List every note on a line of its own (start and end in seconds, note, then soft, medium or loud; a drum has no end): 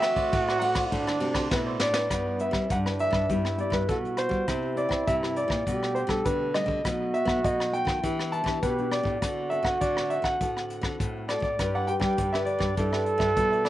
0.00 0.30 D3 medium
0.00 0.13 A3 medium
0.00 0.13 C4 medium
0.00 0.14 F#4 medium
0.00 0.94 F#4 loud
0.00 0.63 E5 loud
0.00 muted cavaquinho stroke soft
0.00 cross-stick medium
0.00 ride medium
0.15 0.57 A3 medium
0.15 0.57 C4 medium
0.15 0.57 F#4 medium
0.15 0.30 A4 medium
0.15 0.31 C5 medium
0.15 0.31 D5 medium
0.15 kick medium
0.15 ride soft
0.31 0.89 A2 medium
0.31 0.84 A2 medium
0.31 0.46 F#4 soft
0.31 0.46 A4 soft
0.31 0.47 C5 soft
0.31 0.46 D5 medium
0.31 kick medium
0.31 ride soft
0.48 0.76 A4 medium
0.48 0.75 C5 medium
0.48 0.74 D5 medium
0.48 cross-stick medium
0.59 1.17 A3 medium
0.59 1.17 C4 medium
0.59 1.17 F#4 medium
0.59 1.46 F#5 loud
0.59 ride medium
0.75 0.91 A4 medium
0.75 0.91 C5 medium
0.75 0.90 D5 medium
0.75 kick medium
0.75 cross-stick medium
0.75 ride medium
0.91 1.05 A2 medium
0.91 1.49 D3 medium
0.91 1.54 D4 medium
0.91 1.06 F#4 soft
0.91 1.06 A4 soft
0.91 1.06 C5 soft
0.91 1.05 D5 soft
0.91 kick medium
0.91 ride soft
1.07 1.20 D3 medium
1.07 1.19 A4 medium
1.07 1.19 C5 medium
1.07 1.20 D5 medium
1.07 cross-stick medium
1.20 1.48 C3 medium
1.20 1.47 A3 medium
1.20 1.47 C4 medium
1.20 1.47 F#4 medium
1.20 muted cavaquinho stroke soft
1.20 ride soft
1.34 1.50 A4 medium
1.34 1.49 C5 medium
1.34 1.49 D5 medium
1.34 kick medium
1.34 cross-stick medium
1.34 ride medium
1.51 2.08 A2 medium
1.51 1.78 B2 medium
1.51 1.92 A3 medium
1.51 1.92 C4 medium
1.51 1.82 E4 medium
1.51 1.65 F#4 soft
1.51 1.92 F#4 medium
1.51 1.65 A4 soft
1.51 1.59 B4 medium
1.51 1.65 C5 soft
1.51 1.65 D5 soft
1.51 kick medium
1.51 snare soft
1.66 1.93 A4 medium
1.66 1.93 C5 medium
1.66 1.91 D5 medium
1.80 2.07 A2 medium
1.80 2.10 D4 medium
1.80 2.37 D5 loud
1.80 snare medium
1.93 2.38 D4 medium
1.93 2.39 E4 medium
1.93 2.09 A4 medium
1.93 2.39 B4 medium
1.93 2.09 C5 medium
1.93 2.08 D5 medium
1.93 snare medium
2.09 2.49 G2 medium
2.09 2.67 G3 medium
2.09 2.72 B3 medium
2.09 kick medium
2.09 cross-stick medium
2.09 closed hi-hat medium
2.39 2.68 D4 medium
2.39 2.68 E4 soft
2.39 2.68 B4 medium
2.39 2.68 E5 medium
2.39 closed hi-hat soft
2.51 2.66 G3 medium
2.51 kick medium
2.51 cross-stick medium
2.70 3.08 G2 medium
2.70 3.26 D3 soft
2.70 3.32 D4 medium
2.70 2.78 F#5 medium
2.70 kick medium
2.70 closed hi-hat medium
2.85 3.25 D4 soft
2.85 3.25 E4 medium
2.85 3.25 B4 medium
2.85 cross-stick medium
2.85 closed hi-hat soft
2.99 3.55 E5 loud
2.99 closed hi-hat soft
3.10 3.25 G2 medium
3.10 kick medium
3.10 cross-stick medium
3.29 3.67 G2 medium
3.29 3.86 G3 medium
3.29 3.47 B3 medium
3.29 3.47 E4 medium
3.29 3.89 E4 loud
3.29 3.47 G4 medium
3.29 kick medium
3.29 closed hi-hat medium
3.45 cross-stick medium
3.45 closed hi-hat soft
3.58 3.98 B3 medium
3.58 3.98 E4 medium
3.58 3.98 G4 medium
3.58 3.75 D5 medium
3.58 closed hi-hat soft
3.70 3.84 G2 medium
3.70 3.87 B4 medium
3.70 kick medium
3.70 cross-stick medium
3.70 closed hi-hat soft
3.89 4.27 B2 medium
3.89 4.45 G3 medium
3.89 4.50 F#4 medium
3.89 3.95 A4 medium
3.89 kick medium
3.89 closed hi-hat medium
4.04 4.43 B3 medium
4.04 4.44 E4 medium
4.04 closed hi-hat soft
4.17 4.79 C5 medium
4.17 cross-stick medium
4.17 closed hi-hat soft
4.29 4.43 G3 medium
4.29 kick medium
4.29 closed hi-hat soft
4.47 5.04 C3 medium
4.47 4.86 C3 loud
4.47 4.73 C4 medium
4.47 4.73 E4 medium
4.47 5.67 E4 loud
4.47 4.73 G4 medium
4.47 kick medium
4.47 cross-stick medium
4.47 closed hi-hat medium
4.76 5.04 C4 medium
4.76 5.04 E4 medium
4.76 5.05 G4 medium
4.76 5.05 D5 medium
4.76 closed hi-hat soft
4.89 5.03 C4 medium
4.89 kick medium
4.89 cross-stick medium
4.89 closed hi-hat soft
5.07 5.63 G2 medium
5.07 5.45 C3 medium
5.07 5.14 E5 medium
5.07 kick medium
5.07 closed hi-hat medium
5.22 5.62 C4 medium
5.22 5.62 E4 medium
5.22 5.62 G4 medium
5.22 cross-stick medium
5.36 5.92 D5 medium
5.36 closed hi-hat medium
5.48 5.62 A#2 medium
5.48 kick medium
5.48 cross-stick medium
5.66 6.23 B2 medium
5.66 6.04 B2 medium
5.66 6.06 G3 medium
5.66 6.06 A3 medium
5.66 6.07 D4 medium
5.66 6.55 G4 loud
5.66 kick medium
5.66 closed hi-hat medium
5.83 cross-stick medium
5.83 closed hi-hat soft
5.95 6.00 C5 medium
5.95 closed hi-hat soft
6.07 6.21 B2 medium
6.07 6.50 G3 medium
6.07 6.50 A3 medium
6.07 6.50 D4 medium
6.07 6.24 A4 medium
6.07 kick medium
6.07 cross-stick medium
6.25 6.82 B2 medium
6.25 6.63 D3 medium
6.25 6.53 B4 medium
6.25 kick medium
6.25 closed hi-hat medium
6.54 6.80 G3 medium
6.54 6.80 A3 medium
6.54 6.80 D4 medium
6.54 7.16 D#5 medium
6.54 cross-stick medium
6.54 closed hi-hat soft
6.66 6.80 D3 medium
6.66 kick medium
6.66 closed hi-hat soft
6.84 7.41 B2 medium
6.84 7.23 B2 medium
6.84 7.12 F#3 medium
6.84 7.12 A3 medium
6.84 7.13 D#4 medium
6.84 8.04 F#4 loud
6.84 kick medium
6.84 cross-stick medium
6.84 closed hi-hat medium
7.14 7.42 E5 medium
7.14 closed hi-hat soft
7.25 7.67 F#3 medium
7.25 7.68 A3 medium
7.25 7.40 B3 medium
7.25 7.68 D#4 medium
7.25 kick medium
7.25 cross-stick medium
7.43 8.00 F#2 soft
7.43 7.82 B2 medium
7.43 7.72 D#5 medium
7.43 kick medium
7.43 closed hi-hat medium
7.60 cross-stick medium
7.60 closed hi-hat soft
7.71 7.97 F#3 medium
7.71 7.97 A3 medium
7.71 7.98 D#4 medium
7.71 8.29 G5 loud
7.71 closed hi-hat soft
7.85 7.99 D#3 medium
7.85 kick medium
7.85 cross-stick medium
8.03 8.60 E3 soft
8.03 8.41 E3 medium
8.03 8.43 B3 soft
8.03 8.43 D4 medium
8.03 8.61 E4 loud
8.03 8.44 G4 medium
8.03 kick medium
8.03 closed hi-hat medium
8.19 cross-stick medium
8.19 closed hi-hat soft
8.32 8.60 A5 loud
8.32 closed hi-hat soft
8.44 8.58 E3 medium
8.44 8.72 B3 medium
8.44 8.72 D4 medium
8.44 8.72 G4 medium
8.44 kick medium
8.44 cross-stick medium
8.44 closed hi-hat soft
8.62 9.01 B2 medium
8.62 9.19 B2 medium
8.62 9.18 G4 medium
8.62 8.90 B4 medium
8.62 kick medium
8.62 closed hi-hat medium
8.78 9.18 B3 medium
8.78 9.18 D4 medium
8.78 9.18 G4 medium
8.78 closed hi-hat soft
8.92 9.53 D5 loud
8.92 cross-stick medium
8.92 closed hi-hat soft
9.03 9.18 A2 medium
9.03 kick medium
9.03 closed hi-hat soft
9.21 9.60 D3 medium
9.21 9.78 D3 medium
9.21 9.47 C4 medium
9.21 11.25 F#4 loud
9.21 9.47 F#4 medium
9.21 9.47 A4 medium
9.21 kick medium
9.21 cross-stick medium
9.21 closed hi-hat medium
9.50 9.79 C4 medium
9.50 9.80 F#4 medium
9.50 9.80 A4 medium
9.50 9.64 E5 medium
9.50 closed hi-hat soft
9.63 9.77 D3 medium
9.63 9.81 F#5 medium
9.63 kick medium
9.63 cross-stick medium
9.63 closed hi-hat soft
9.81 10.37 A2 medium
9.81 10.19 D3 medium
9.81 10.11 D5 medium
9.81 kick medium
9.81 closed hi-hat medium
9.97 10.36 C4 medium
9.97 10.36 F#4 medium
9.97 10.37 A4 medium
9.97 cross-stick medium
10.10 10.24 E5 medium
10.10 closed hi-hat soft
10.22 10.36 D3 medium
10.22 11.25 F#5 medium
10.22 kick medium
10.22 cross-stick medium
10.41 10.78 A2 medium
10.41 10.97 D3 medium
10.41 10.81 C4 medium
10.41 10.81 F#4 medium
10.41 10.81 A4 medium
10.41 kick medium
10.41 closed hi-hat medium
10.57 cross-stick medium
10.57 closed hi-hat soft
10.70 closed hi-hat medium
10.81 10.95 D3 medium
10.81 11.24 C4 medium
10.81 11.24 F#4 medium
10.81 11.24 A4 medium
10.81 kick medium
10.81 cross-stick medium
11.00 11.38 A2 medium
11.00 11.57 A2 medium
11.00 kick medium
11.00 closed hi-hat medium
11.28 11.47 C4 medium
11.28 11.47 F#4 medium
11.28 11.48 A4 medium
11.28 11.41 D5 medium
11.28 cross-stick medium
11.28 closed hi-hat medium
11.40 11.54 A2 medium
11.40 11.74 D5 medium
11.40 kick medium
11.40 closed hi-hat soft
11.59 11.97 G2 loud
11.59 12.16 G3 medium
11.59 11.72 D4 soft
11.59 11.85 D4 medium
11.59 12.73 G4 medium
11.59 11.73 G4 medium
11.59 11.85 G4 medium
11.59 11.73 B4 medium
11.59 11.85 B4 medium
11.59 11.73 D5 medium
11.59 kick medium
11.59 cross-stick medium
11.59 closed hi-hat medium
11.75 11.86 G4 medium
11.75 11.87 B4 medium
11.75 11.87 D5 medium
11.75 11.88 F#5 medium
11.87 12.28 D4 soft
11.87 12.29 G4 medium
11.87 12.29 B4 medium
11.87 11.92 G5 medium
11.87 muted cavaquinho stroke soft
11.87 closed hi-hat soft
12.00 12.14 G3 medium
12.00 12.17 G4 medium
12.00 12.16 B4 medium
12.00 12.16 D5 medium
12.00 12.32 G5 medium
12.00 kick medium
12.00 cross-stick medium
12.17 12.56 G2 medium
12.17 12.75 D3 medium
12.17 12.31 D4 soft
12.17 12.32 G4 soft
12.17 12.32 B4 medium
12.17 12.32 D5 medium
12.17 kick medium
12.17 closed hi-hat medium
12.33 12.73 D4 medium
12.33 12.74 G4 medium
12.33 12.61 G4 soft
12.33 12.60 B4 medium
12.33 12.74 B4 medium
12.33 12.59 D5 medium
12.33 12.38 E5 medium
12.33 cross-stick medium
12.33 closed hi-hat soft
12.45 13.63 D5 medium
12.45 closed hi-hat soft
12.58 12.73 G2 medium
12.58 12.76 G4 medium
12.58 12.76 B4 medium
12.58 12.75 D5 medium
12.58 kick medium
12.58 cross-stick medium
12.77 13.15 G2 medium
12.77 13.34 G3 medium
12.77 12.91 D4 soft
12.77 13.18 D4 medium
12.77 13.18 E4 medium
12.77 12.91 G4 soft
12.77 13.69 A4 loud
12.77 12.91 B4 soft
12.77 13.18 B4 medium
12.77 12.91 E5 medium
12.77 kick medium
12.77 closed hi-hat medium
12.92 13.04 G4 medium
12.92 13.04 B4 medium
12.92 13.05 E5 medium
12.92 cross-stick medium
12.92 closed hi-hat soft
13.05 muted cavaquinho stroke soft
13.05 closed hi-hat soft
13.18 13.32 G2 medium
13.18 13.61 D4 medium
13.18 13.61 E4 medium
13.18 13.35 G4 medium
13.18 13.34 B4 medium
13.18 13.61 B4 medium
13.18 13.34 E5 medium
13.18 kick medium
13.18 cross-stick medium
13.18 closed hi-hat soft
13.36 13.69 B2 medium
13.36 13.69 G3 medium
13.36 13.50 D4 soft
13.36 13.50 G4 soft
13.36 13.51 B4 soft
13.36 13.50 E5 soft
13.36 kick medium
13.36 closed hi-hat medium
13.51 13.69 G4 medium
13.51 13.69 B4 medium
13.51 13.69 E5 medium
13.51 closed hi-hat soft
13.64 13.69 D5 medium
13.64 cross-stick medium
13.64 closed hi-hat soft